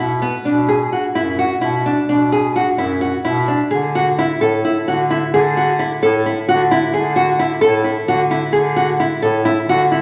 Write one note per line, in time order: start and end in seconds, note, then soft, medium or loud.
0.00 0.36 B2 medium
0.00 0.11 E4 medium
0.22 0.34 B3 medium
0.45 1.01 B2 medium
0.45 0.58 D4 medium
0.69 0.81 G#4 medium
0.92 1.05 F#4 medium
1.14 1.51 F#2 medium
1.14 1.27 E4 medium
1.39 1.51 F#4 medium
1.61 1.99 B2 medium
1.61 1.74 E4 medium
1.86 1.98 D4 medium
2.08 2.64 B2 medium
2.08 2.21 D4 medium
2.32 2.44 G#4 medium
2.56 2.68 F#4 medium
2.77 3.15 F#2 medium
2.77 2.91 E4 medium
3.01 3.14 F#4 medium
3.25 3.62 B2 medium
3.25 3.37 E4 medium
3.48 3.60 D4 medium
3.71 4.27 D3 medium
3.71 3.83 G#4 medium
3.95 4.08 F#4 medium
4.19 4.31 E4 medium
4.40 4.78 A2 medium
4.40 4.53 A4 medium
4.65 4.77 E4 medium
4.87 5.24 D3 medium
4.87 5.00 F#4 medium
5.10 5.23 E4 medium
5.33 5.89 D3 medium
5.33 5.46 G#4 medium
5.57 5.69 F#4 medium
5.79 5.92 E4 medium
6.03 6.39 A2 medium
6.03 6.15 A4 medium
6.26 6.38 E4 medium
6.48 6.85 D3 medium
6.48 6.61 F#4 medium
6.71 6.83 E4 medium
6.93 7.49 D3 medium
6.93 7.06 G#4 medium
7.16 7.28 F#4 medium
7.39 7.51 E4 medium
7.61 7.98 A2 medium
7.61 7.74 A4 medium
7.84 7.96 E4 medium
8.07 8.44 D3 medium
8.07 8.20 F#4 medium
8.31 8.43 E4 medium
8.53 9.09 D3 medium
8.53 8.65 G#4 medium
8.76 8.89 F#4 medium
9.00 9.12 E4 medium
9.22 9.59 A2 medium
9.22 9.35 A4 medium
9.45 9.58 E4 medium
9.68 10.02 D3 medium
9.68 9.81 F#4 medium
9.91 10.02 E4 medium